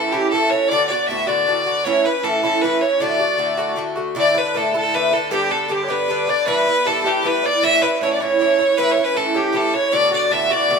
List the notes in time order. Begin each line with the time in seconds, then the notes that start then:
Already playing: A2 E3 C#4 E4 A4
0.11 A2 E3 C#4 E4 G4
0.31 A2 E3 C#4 A4
0.35 E4
0.50 C#4 E4 C#5
0.54 E3
0.68 A2 D3 D5
0.72 B3 F#4
0.88 B3 F#4 D5
0.93 D3
1.07 A2 D3 B3 E5
1.11 F#4
1.27 A2 D3 B3 F#4 D5
1.46 A2 D3 B3 F#4
1.66 D3 B3 F#4
1.84 A2 E3 C#4 E4 C#5
2.04 E3 C#4 E4 B4
2.23 A2 E3 C#4 E4 A4
2.43 A2 E3 C#4 E4 A4
2.61 A2 E3 C#4 B4
2.65 E4
2.81 E3 C#4 E4 C#5
3.00 A2 D3 A3 F#4 D5
3.20 D3 A3 F#4
3.37 A2 D3 A3 F#4
3.57 A2 D3 A3 F#4
3.76 A2 D3 A3 F#4
3.96 D3 A3 F#4
4.15 A2 D3 A3 E4 D5
4.19 D5
4.34 D3 A3 E4 B4
4.54 A2 D3 A3 E4 A4
4.72 A2 D3 A3 E4 A4
4.93 A2 D3 A3 E4 B4
5.11 D3 A3 E4 A4
5.31 G2 D3 B3 D4 G4
5.50 D3 B3 D4 A4
5.68 G2 D3 B3 D4 G4
5.83 C#5
5.88 G2 D3 B3 D4 B4
6.08 G2 D3 B3 D4
6.27 D3 B3 D4 D5
6.46 G2 E3 B3 E4 B4
6.66 E3 B3 E4 B4
6.85 G2 E3 B3 E4 A4
7.03 G2 E3 B3 E4 G4
7.23 G2 E3 B3 E4 B4
7.43 E3 B3 E4 D5
7.63 A2 E3 C#4 E4 E5
7.82 E3 C#4 E4 B4
8.01 A2 E3 C#4 E4 C#5
8.13 D5
8.20 A2 E3 C#4 E4 C#5
8.40 A2 E3 C#4 E4
8.59 E3 C#4 E4
8.77 A2 E3 C#4 E4 B4
8.91 C#5
8.97 E3 C#4 E4
9.04 B4
9.15 A2 E3 C#4 E4 A4
9.34 A2 E3 C#4 E4 G4
9.53 A2 E3 C#4 E4 A4
9.57 A4
9.73 E3 C#4 E4 C#5
9.92 A2 D3 B3 F#4 D5
10.10 D3 B3 F#4 D5
10.31 A2 D3 B3 F#4 E5
10.44 E5
10.50 A2 D3 B3 F#4 D5
10.69 A2 D3 B3 F#4